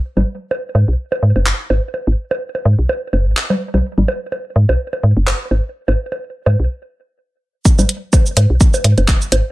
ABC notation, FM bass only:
X:1
M:4/4
L:1/16
Q:"Swing 16ths" 1/4=126
K:G#m
V:1 name="FM bass" clef=bass
z G,,, z4 G,, B,,, z2 G,, F,,, z2 G,,, z | z G,,, z4 G,, B,,, z2 F,,, G,,, z3 B,,, | z G,,, z4 G,, B,,, z2 G,, F,,, z2 G,,, z | z G,,, z4 G,, B,,, z8 |
z G,,, z4 G,, B,,, z2 G,, F,,, z2 G,,, z |]